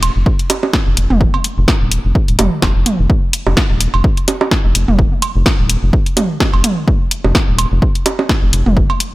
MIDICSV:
0, 0, Header, 1, 3, 480
1, 0, Start_track
1, 0, Tempo, 472441
1, 1227, Time_signature, 4, 2, 24, 8
1, 9289, End_track
2, 0, Start_track
2, 0, Title_t, "Analog synth bass"
2, 0, Program_c, 0, 38
2, 161, Note_on_c, 0, 29, 82
2, 241, Note_off_c, 0, 29, 0
2, 882, Note_on_c, 0, 29, 74
2, 961, Note_off_c, 0, 29, 0
2, 987, Note_on_c, 0, 29, 84
2, 1088, Note_off_c, 0, 29, 0
2, 1121, Note_on_c, 0, 29, 81
2, 1295, Note_off_c, 0, 29, 0
2, 1601, Note_on_c, 0, 29, 96
2, 1681, Note_off_c, 0, 29, 0
2, 1841, Note_on_c, 0, 27, 80
2, 2015, Note_off_c, 0, 27, 0
2, 2081, Note_on_c, 0, 29, 88
2, 2161, Note_off_c, 0, 29, 0
2, 2321, Note_on_c, 0, 27, 97
2, 2401, Note_off_c, 0, 27, 0
2, 2427, Note_on_c, 0, 29, 81
2, 2528, Note_off_c, 0, 29, 0
2, 2666, Note_on_c, 0, 29, 89
2, 2768, Note_off_c, 0, 29, 0
2, 2802, Note_on_c, 0, 29, 97
2, 2882, Note_off_c, 0, 29, 0
2, 3041, Note_on_c, 0, 29, 92
2, 3121, Note_off_c, 0, 29, 0
2, 3521, Note_on_c, 0, 29, 94
2, 3601, Note_off_c, 0, 29, 0
2, 3761, Note_on_c, 0, 27, 80
2, 3935, Note_off_c, 0, 27, 0
2, 4002, Note_on_c, 0, 29, 83
2, 4081, Note_off_c, 0, 29, 0
2, 4721, Note_on_c, 0, 29, 78
2, 4801, Note_off_c, 0, 29, 0
2, 4827, Note_on_c, 0, 29, 83
2, 4928, Note_off_c, 0, 29, 0
2, 4962, Note_on_c, 0, 29, 78
2, 5135, Note_off_c, 0, 29, 0
2, 5441, Note_on_c, 0, 29, 97
2, 5521, Note_off_c, 0, 29, 0
2, 5681, Note_on_c, 0, 27, 80
2, 5855, Note_off_c, 0, 27, 0
2, 5921, Note_on_c, 0, 29, 86
2, 6001, Note_off_c, 0, 29, 0
2, 6641, Note_on_c, 0, 29, 104
2, 6721, Note_off_c, 0, 29, 0
2, 7361, Note_on_c, 0, 29, 96
2, 7441, Note_off_c, 0, 29, 0
2, 7601, Note_on_c, 0, 27, 78
2, 7775, Note_off_c, 0, 27, 0
2, 7841, Note_on_c, 0, 29, 85
2, 7921, Note_off_c, 0, 29, 0
2, 8561, Note_on_c, 0, 29, 79
2, 8641, Note_off_c, 0, 29, 0
2, 8666, Note_on_c, 0, 29, 90
2, 8768, Note_off_c, 0, 29, 0
2, 8801, Note_on_c, 0, 29, 81
2, 8975, Note_off_c, 0, 29, 0
2, 9289, End_track
3, 0, Start_track
3, 0, Title_t, "Drums"
3, 26, Note_on_c, 9, 42, 87
3, 27, Note_on_c, 9, 56, 66
3, 128, Note_off_c, 9, 42, 0
3, 129, Note_off_c, 9, 56, 0
3, 266, Note_on_c, 9, 36, 106
3, 368, Note_off_c, 9, 36, 0
3, 400, Note_on_c, 9, 42, 36
3, 502, Note_off_c, 9, 42, 0
3, 506, Note_on_c, 9, 42, 90
3, 506, Note_on_c, 9, 61, 58
3, 608, Note_off_c, 9, 42, 0
3, 608, Note_off_c, 9, 61, 0
3, 641, Note_on_c, 9, 61, 56
3, 742, Note_off_c, 9, 61, 0
3, 746, Note_on_c, 9, 36, 104
3, 747, Note_on_c, 9, 38, 93
3, 848, Note_off_c, 9, 36, 0
3, 848, Note_off_c, 9, 38, 0
3, 986, Note_on_c, 9, 42, 87
3, 1088, Note_off_c, 9, 42, 0
3, 1121, Note_on_c, 9, 47, 86
3, 1222, Note_off_c, 9, 47, 0
3, 1226, Note_on_c, 9, 36, 122
3, 1328, Note_off_c, 9, 36, 0
3, 1361, Note_on_c, 9, 56, 59
3, 1462, Note_off_c, 9, 56, 0
3, 1466, Note_on_c, 9, 42, 85
3, 1568, Note_off_c, 9, 42, 0
3, 1706, Note_on_c, 9, 36, 117
3, 1706, Note_on_c, 9, 38, 93
3, 1807, Note_off_c, 9, 38, 0
3, 1808, Note_off_c, 9, 36, 0
3, 1946, Note_on_c, 9, 42, 96
3, 2047, Note_off_c, 9, 42, 0
3, 2186, Note_on_c, 9, 36, 108
3, 2288, Note_off_c, 9, 36, 0
3, 2320, Note_on_c, 9, 42, 37
3, 2421, Note_off_c, 9, 42, 0
3, 2426, Note_on_c, 9, 42, 93
3, 2427, Note_on_c, 9, 47, 84
3, 2427, Note_on_c, 9, 61, 57
3, 2527, Note_off_c, 9, 42, 0
3, 2528, Note_off_c, 9, 47, 0
3, 2528, Note_off_c, 9, 61, 0
3, 2666, Note_on_c, 9, 36, 108
3, 2666, Note_on_c, 9, 38, 101
3, 2666, Note_on_c, 9, 56, 61
3, 2666, Note_on_c, 9, 61, 54
3, 2768, Note_off_c, 9, 36, 0
3, 2768, Note_off_c, 9, 38, 0
3, 2768, Note_off_c, 9, 56, 0
3, 2768, Note_off_c, 9, 61, 0
3, 2906, Note_on_c, 9, 42, 90
3, 2907, Note_on_c, 9, 47, 80
3, 3008, Note_off_c, 9, 42, 0
3, 3008, Note_off_c, 9, 47, 0
3, 3146, Note_on_c, 9, 36, 124
3, 3248, Note_off_c, 9, 36, 0
3, 3386, Note_on_c, 9, 42, 92
3, 3488, Note_off_c, 9, 42, 0
3, 3521, Note_on_c, 9, 61, 53
3, 3623, Note_off_c, 9, 61, 0
3, 3626, Note_on_c, 9, 36, 117
3, 3626, Note_on_c, 9, 38, 94
3, 3728, Note_off_c, 9, 36, 0
3, 3728, Note_off_c, 9, 38, 0
3, 3866, Note_on_c, 9, 42, 96
3, 3968, Note_off_c, 9, 42, 0
3, 4001, Note_on_c, 9, 56, 58
3, 4102, Note_off_c, 9, 56, 0
3, 4106, Note_on_c, 9, 36, 109
3, 4208, Note_off_c, 9, 36, 0
3, 4241, Note_on_c, 9, 42, 37
3, 4342, Note_off_c, 9, 42, 0
3, 4347, Note_on_c, 9, 42, 93
3, 4347, Note_on_c, 9, 61, 58
3, 4448, Note_off_c, 9, 42, 0
3, 4449, Note_off_c, 9, 61, 0
3, 4481, Note_on_c, 9, 61, 59
3, 4582, Note_off_c, 9, 61, 0
3, 4586, Note_on_c, 9, 36, 111
3, 4587, Note_on_c, 9, 38, 94
3, 4688, Note_off_c, 9, 36, 0
3, 4688, Note_off_c, 9, 38, 0
3, 4826, Note_on_c, 9, 42, 95
3, 4928, Note_off_c, 9, 42, 0
3, 4961, Note_on_c, 9, 47, 81
3, 5062, Note_off_c, 9, 47, 0
3, 5066, Note_on_c, 9, 36, 120
3, 5168, Note_off_c, 9, 36, 0
3, 5306, Note_on_c, 9, 42, 93
3, 5306, Note_on_c, 9, 56, 60
3, 5408, Note_off_c, 9, 42, 0
3, 5408, Note_off_c, 9, 56, 0
3, 5546, Note_on_c, 9, 36, 114
3, 5546, Note_on_c, 9, 38, 89
3, 5648, Note_off_c, 9, 36, 0
3, 5648, Note_off_c, 9, 38, 0
3, 5786, Note_on_c, 9, 42, 93
3, 5888, Note_off_c, 9, 42, 0
3, 6026, Note_on_c, 9, 36, 114
3, 6128, Note_off_c, 9, 36, 0
3, 6161, Note_on_c, 9, 42, 37
3, 6262, Note_off_c, 9, 42, 0
3, 6266, Note_on_c, 9, 47, 80
3, 6266, Note_on_c, 9, 61, 54
3, 6267, Note_on_c, 9, 42, 96
3, 6368, Note_off_c, 9, 42, 0
3, 6368, Note_off_c, 9, 47, 0
3, 6368, Note_off_c, 9, 61, 0
3, 6506, Note_on_c, 9, 36, 106
3, 6506, Note_on_c, 9, 38, 94
3, 6506, Note_on_c, 9, 61, 57
3, 6608, Note_off_c, 9, 36, 0
3, 6608, Note_off_c, 9, 38, 0
3, 6608, Note_off_c, 9, 61, 0
3, 6640, Note_on_c, 9, 56, 62
3, 6741, Note_off_c, 9, 56, 0
3, 6746, Note_on_c, 9, 42, 93
3, 6746, Note_on_c, 9, 47, 76
3, 6848, Note_off_c, 9, 42, 0
3, 6848, Note_off_c, 9, 47, 0
3, 6986, Note_on_c, 9, 36, 118
3, 7088, Note_off_c, 9, 36, 0
3, 7227, Note_on_c, 9, 42, 89
3, 7328, Note_off_c, 9, 42, 0
3, 7360, Note_on_c, 9, 61, 52
3, 7462, Note_off_c, 9, 61, 0
3, 7466, Note_on_c, 9, 36, 109
3, 7466, Note_on_c, 9, 38, 87
3, 7568, Note_off_c, 9, 36, 0
3, 7568, Note_off_c, 9, 38, 0
3, 7707, Note_on_c, 9, 42, 92
3, 7707, Note_on_c, 9, 56, 64
3, 7808, Note_off_c, 9, 42, 0
3, 7808, Note_off_c, 9, 56, 0
3, 7946, Note_on_c, 9, 36, 102
3, 8048, Note_off_c, 9, 36, 0
3, 8081, Note_on_c, 9, 42, 35
3, 8182, Note_off_c, 9, 42, 0
3, 8187, Note_on_c, 9, 42, 90
3, 8187, Note_on_c, 9, 61, 56
3, 8288, Note_off_c, 9, 42, 0
3, 8289, Note_off_c, 9, 61, 0
3, 8320, Note_on_c, 9, 61, 57
3, 8422, Note_off_c, 9, 61, 0
3, 8426, Note_on_c, 9, 36, 103
3, 8427, Note_on_c, 9, 38, 90
3, 8528, Note_off_c, 9, 36, 0
3, 8529, Note_off_c, 9, 38, 0
3, 8666, Note_on_c, 9, 42, 89
3, 8768, Note_off_c, 9, 42, 0
3, 8801, Note_on_c, 9, 47, 81
3, 8903, Note_off_c, 9, 47, 0
3, 8907, Note_on_c, 9, 36, 110
3, 9008, Note_off_c, 9, 36, 0
3, 9040, Note_on_c, 9, 56, 68
3, 9142, Note_off_c, 9, 56, 0
3, 9147, Note_on_c, 9, 42, 87
3, 9248, Note_off_c, 9, 42, 0
3, 9289, End_track
0, 0, End_of_file